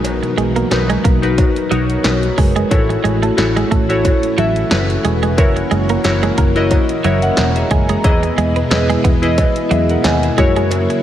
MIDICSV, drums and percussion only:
0, 0, Header, 1, 2, 480
1, 0, Start_track
1, 0, Key_signature, 5, "major"
1, 0, Tempo, 666667
1, 33, Time_signature, 4, 2, 24, 8
1, 7939, End_track
2, 0, Start_track
2, 0, Title_t, "Drums"
2, 32, Note_on_c, 9, 56, 66
2, 34, Note_on_c, 9, 42, 98
2, 104, Note_off_c, 9, 56, 0
2, 106, Note_off_c, 9, 42, 0
2, 168, Note_on_c, 9, 42, 44
2, 240, Note_off_c, 9, 42, 0
2, 275, Note_on_c, 9, 42, 59
2, 347, Note_off_c, 9, 42, 0
2, 405, Note_on_c, 9, 42, 46
2, 477, Note_off_c, 9, 42, 0
2, 513, Note_on_c, 9, 42, 82
2, 513, Note_on_c, 9, 56, 69
2, 515, Note_on_c, 9, 38, 106
2, 585, Note_off_c, 9, 42, 0
2, 585, Note_off_c, 9, 56, 0
2, 587, Note_off_c, 9, 38, 0
2, 646, Note_on_c, 9, 42, 54
2, 718, Note_off_c, 9, 42, 0
2, 754, Note_on_c, 9, 36, 93
2, 755, Note_on_c, 9, 42, 79
2, 826, Note_off_c, 9, 36, 0
2, 827, Note_off_c, 9, 42, 0
2, 887, Note_on_c, 9, 42, 49
2, 959, Note_off_c, 9, 42, 0
2, 993, Note_on_c, 9, 56, 69
2, 994, Note_on_c, 9, 42, 81
2, 995, Note_on_c, 9, 36, 76
2, 1065, Note_off_c, 9, 56, 0
2, 1066, Note_off_c, 9, 42, 0
2, 1067, Note_off_c, 9, 36, 0
2, 1126, Note_on_c, 9, 42, 51
2, 1198, Note_off_c, 9, 42, 0
2, 1235, Note_on_c, 9, 42, 77
2, 1307, Note_off_c, 9, 42, 0
2, 1365, Note_on_c, 9, 42, 42
2, 1437, Note_off_c, 9, 42, 0
2, 1471, Note_on_c, 9, 38, 111
2, 1471, Note_on_c, 9, 56, 65
2, 1473, Note_on_c, 9, 42, 83
2, 1543, Note_off_c, 9, 38, 0
2, 1543, Note_off_c, 9, 56, 0
2, 1545, Note_off_c, 9, 42, 0
2, 1606, Note_on_c, 9, 42, 50
2, 1678, Note_off_c, 9, 42, 0
2, 1713, Note_on_c, 9, 36, 84
2, 1713, Note_on_c, 9, 46, 69
2, 1785, Note_off_c, 9, 36, 0
2, 1785, Note_off_c, 9, 46, 0
2, 1846, Note_on_c, 9, 42, 54
2, 1918, Note_off_c, 9, 42, 0
2, 1952, Note_on_c, 9, 56, 64
2, 1954, Note_on_c, 9, 36, 108
2, 1954, Note_on_c, 9, 42, 102
2, 2024, Note_off_c, 9, 56, 0
2, 2026, Note_off_c, 9, 36, 0
2, 2026, Note_off_c, 9, 42, 0
2, 2090, Note_on_c, 9, 42, 45
2, 2162, Note_off_c, 9, 42, 0
2, 2197, Note_on_c, 9, 42, 57
2, 2269, Note_off_c, 9, 42, 0
2, 2326, Note_on_c, 9, 42, 46
2, 2398, Note_off_c, 9, 42, 0
2, 2433, Note_on_c, 9, 42, 84
2, 2435, Note_on_c, 9, 38, 101
2, 2436, Note_on_c, 9, 56, 67
2, 2505, Note_off_c, 9, 42, 0
2, 2507, Note_off_c, 9, 38, 0
2, 2508, Note_off_c, 9, 56, 0
2, 2569, Note_on_c, 9, 42, 50
2, 2641, Note_off_c, 9, 42, 0
2, 2675, Note_on_c, 9, 36, 88
2, 2677, Note_on_c, 9, 42, 75
2, 2747, Note_off_c, 9, 36, 0
2, 2749, Note_off_c, 9, 42, 0
2, 2807, Note_on_c, 9, 42, 49
2, 2879, Note_off_c, 9, 42, 0
2, 2914, Note_on_c, 9, 56, 66
2, 2916, Note_on_c, 9, 36, 77
2, 2916, Note_on_c, 9, 42, 86
2, 2986, Note_off_c, 9, 56, 0
2, 2988, Note_off_c, 9, 36, 0
2, 2988, Note_off_c, 9, 42, 0
2, 3047, Note_on_c, 9, 42, 54
2, 3119, Note_off_c, 9, 42, 0
2, 3154, Note_on_c, 9, 42, 77
2, 3226, Note_off_c, 9, 42, 0
2, 3284, Note_on_c, 9, 42, 42
2, 3356, Note_off_c, 9, 42, 0
2, 3391, Note_on_c, 9, 38, 117
2, 3392, Note_on_c, 9, 56, 59
2, 3394, Note_on_c, 9, 42, 89
2, 3463, Note_off_c, 9, 38, 0
2, 3464, Note_off_c, 9, 56, 0
2, 3466, Note_off_c, 9, 42, 0
2, 3527, Note_on_c, 9, 42, 52
2, 3599, Note_off_c, 9, 42, 0
2, 3634, Note_on_c, 9, 42, 67
2, 3706, Note_off_c, 9, 42, 0
2, 3764, Note_on_c, 9, 42, 56
2, 3836, Note_off_c, 9, 42, 0
2, 3873, Note_on_c, 9, 56, 66
2, 3874, Note_on_c, 9, 36, 111
2, 3874, Note_on_c, 9, 42, 104
2, 3945, Note_off_c, 9, 56, 0
2, 3946, Note_off_c, 9, 36, 0
2, 3946, Note_off_c, 9, 42, 0
2, 4007, Note_on_c, 9, 42, 45
2, 4079, Note_off_c, 9, 42, 0
2, 4114, Note_on_c, 9, 42, 57
2, 4186, Note_off_c, 9, 42, 0
2, 4243, Note_on_c, 9, 42, 49
2, 4315, Note_off_c, 9, 42, 0
2, 4351, Note_on_c, 9, 42, 88
2, 4353, Note_on_c, 9, 38, 107
2, 4355, Note_on_c, 9, 56, 70
2, 4423, Note_off_c, 9, 42, 0
2, 4425, Note_off_c, 9, 38, 0
2, 4427, Note_off_c, 9, 56, 0
2, 4486, Note_on_c, 9, 42, 49
2, 4558, Note_off_c, 9, 42, 0
2, 4591, Note_on_c, 9, 42, 80
2, 4592, Note_on_c, 9, 36, 92
2, 4663, Note_off_c, 9, 42, 0
2, 4664, Note_off_c, 9, 36, 0
2, 4722, Note_on_c, 9, 42, 49
2, 4794, Note_off_c, 9, 42, 0
2, 4829, Note_on_c, 9, 42, 83
2, 4832, Note_on_c, 9, 36, 78
2, 4833, Note_on_c, 9, 56, 67
2, 4901, Note_off_c, 9, 42, 0
2, 4904, Note_off_c, 9, 36, 0
2, 4905, Note_off_c, 9, 56, 0
2, 4962, Note_on_c, 9, 42, 54
2, 5034, Note_off_c, 9, 42, 0
2, 5071, Note_on_c, 9, 42, 73
2, 5143, Note_off_c, 9, 42, 0
2, 5200, Note_on_c, 9, 42, 45
2, 5272, Note_off_c, 9, 42, 0
2, 5307, Note_on_c, 9, 38, 115
2, 5309, Note_on_c, 9, 42, 85
2, 5311, Note_on_c, 9, 56, 66
2, 5379, Note_off_c, 9, 38, 0
2, 5381, Note_off_c, 9, 42, 0
2, 5383, Note_off_c, 9, 56, 0
2, 5442, Note_on_c, 9, 42, 51
2, 5514, Note_off_c, 9, 42, 0
2, 5549, Note_on_c, 9, 42, 69
2, 5551, Note_on_c, 9, 36, 88
2, 5621, Note_off_c, 9, 42, 0
2, 5623, Note_off_c, 9, 36, 0
2, 5682, Note_on_c, 9, 42, 54
2, 5754, Note_off_c, 9, 42, 0
2, 5791, Note_on_c, 9, 42, 103
2, 5791, Note_on_c, 9, 56, 66
2, 5792, Note_on_c, 9, 36, 113
2, 5863, Note_off_c, 9, 42, 0
2, 5863, Note_off_c, 9, 56, 0
2, 5864, Note_off_c, 9, 36, 0
2, 5927, Note_on_c, 9, 42, 47
2, 5999, Note_off_c, 9, 42, 0
2, 6035, Note_on_c, 9, 42, 59
2, 6107, Note_off_c, 9, 42, 0
2, 6164, Note_on_c, 9, 42, 50
2, 6236, Note_off_c, 9, 42, 0
2, 6272, Note_on_c, 9, 42, 86
2, 6273, Note_on_c, 9, 56, 71
2, 6274, Note_on_c, 9, 38, 106
2, 6344, Note_off_c, 9, 42, 0
2, 6345, Note_off_c, 9, 56, 0
2, 6346, Note_off_c, 9, 38, 0
2, 6407, Note_on_c, 9, 42, 52
2, 6479, Note_off_c, 9, 42, 0
2, 6513, Note_on_c, 9, 36, 93
2, 6514, Note_on_c, 9, 42, 80
2, 6585, Note_off_c, 9, 36, 0
2, 6586, Note_off_c, 9, 42, 0
2, 6644, Note_on_c, 9, 42, 50
2, 6716, Note_off_c, 9, 42, 0
2, 6752, Note_on_c, 9, 42, 88
2, 6752, Note_on_c, 9, 56, 70
2, 6753, Note_on_c, 9, 36, 76
2, 6824, Note_off_c, 9, 42, 0
2, 6824, Note_off_c, 9, 56, 0
2, 6825, Note_off_c, 9, 36, 0
2, 6882, Note_on_c, 9, 42, 56
2, 6954, Note_off_c, 9, 42, 0
2, 6992, Note_on_c, 9, 42, 74
2, 7064, Note_off_c, 9, 42, 0
2, 7124, Note_on_c, 9, 42, 43
2, 7196, Note_off_c, 9, 42, 0
2, 7230, Note_on_c, 9, 38, 117
2, 7230, Note_on_c, 9, 56, 65
2, 7233, Note_on_c, 9, 42, 91
2, 7302, Note_off_c, 9, 38, 0
2, 7302, Note_off_c, 9, 56, 0
2, 7305, Note_off_c, 9, 42, 0
2, 7367, Note_on_c, 9, 42, 53
2, 7439, Note_off_c, 9, 42, 0
2, 7473, Note_on_c, 9, 36, 101
2, 7474, Note_on_c, 9, 42, 66
2, 7545, Note_off_c, 9, 36, 0
2, 7546, Note_off_c, 9, 42, 0
2, 7606, Note_on_c, 9, 42, 55
2, 7678, Note_off_c, 9, 42, 0
2, 7710, Note_on_c, 9, 56, 66
2, 7715, Note_on_c, 9, 42, 106
2, 7782, Note_off_c, 9, 56, 0
2, 7787, Note_off_c, 9, 42, 0
2, 7849, Note_on_c, 9, 42, 48
2, 7921, Note_off_c, 9, 42, 0
2, 7939, End_track
0, 0, End_of_file